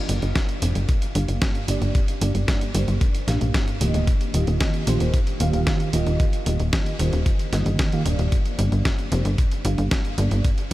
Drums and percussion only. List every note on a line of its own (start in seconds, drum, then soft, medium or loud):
0.09 closed hi-hat medium
0.22 closed hi-hat soft
0.35 kick loud
0.35 snare loud
0.35 closed hi-hat medium
0.49 closed hi-hat soft
0.62 closed hi-hat medium
0.75 closed hi-hat soft
0.89 kick loud
0.89 closed hi-hat medium
1.02 closed hi-hat soft
1.15 closed hi-hat medium
1.28 closed hi-hat soft
1.42 kick loud
1.42 snare loud
1.42 closed hi-hat medium
1.55 closed hi-hat soft
1.68 closed hi-hat medium
1.82 closed hi-hat soft
1.95 kick loud
1.95 closed hi-hat medium
2.08 closed hi-hat soft
2.21 closed hi-hat medium
2.35 closed hi-hat soft
2.48 kick loud
2.48 snare loud
2.48 closed hi-hat medium
2.61 closed hi-hat soft
2.75 closed hi-hat medium
2.88 closed hi-hat soft
3.01 kick loud
3.01 closed hi-hat medium
3.15 closed hi-hat soft
3.28 snare soft
3.28 closed hi-hat medium
3.41 closed hi-hat soft
3.54 kick loud
3.54 snare loud
3.54 closed hi-hat medium
3.68 closed hi-hat soft
3.81 closed hi-hat medium
3.94 closed hi-hat soft
4.07 kick loud
4.07 closed hi-hat medium
4.21 closed hi-hat soft
4.34 closed hi-hat medium
4.47 closed hi-hat soft
4.61 kick loud
4.61 snare loud
4.61 closed hi-hat medium
4.74 closed hi-hat soft
4.87 closed hi-hat medium
5.00 closed hi-hat soft
5.14 kick loud
5.14 closed hi-hat medium
5.27 closed hi-hat soft
5.40 closed hi-hat medium
5.53 closed hi-hat soft
5.67 kick loud
5.67 snare loud
5.67 closed hi-hat medium
5.80 closed hi-hat soft
5.93 closed hi-hat medium
6.07 closed hi-hat soft
6.20 kick loud
6.20 closed hi-hat medium
6.33 closed hi-hat soft
6.46 closed hi-hat medium
6.60 closed hi-hat soft
6.73 kick loud
6.73 snare loud
6.73 closed hi-hat medium
6.86 closed hi-hat soft
6.99 closed hi-hat medium
7.13 closed hi-hat soft
7.26 kick loud
7.26 closed hi-hat medium
7.39 closed hi-hat soft
7.53 snare soft
7.53 closed hi-hat medium
7.66 closed hi-hat soft
7.79 kick loud
7.79 snare loud
7.79 closed hi-hat medium
7.92 closed hi-hat soft
8.06 closed hi-hat medium
8.19 closed hi-hat soft
8.32 kick loud
8.32 closed hi-hat medium
8.45 closed hi-hat soft
8.59 closed hi-hat medium
8.72 closed hi-hat soft
8.85 kick loud
8.85 snare loud
8.85 closed hi-hat medium
8.99 closed hi-hat soft
9.12 closed hi-hat medium
9.25 closed hi-hat soft
9.38 kick loud
9.38 closed hi-hat medium
9.52 closed hi-hat soft
9.65 closed hi-hat medium
9.78 closed hi-hat soft
9.91 kick loud
9.91 snare loud
9.91 closed hi-hat medium
10.05 closed hi-hat soft
10.18 closed hi-hat medium
10.31 closed hi-hat soft
10.44 kick loud
10.44 closed hi-hat medium
10.58 closed hi-hat soft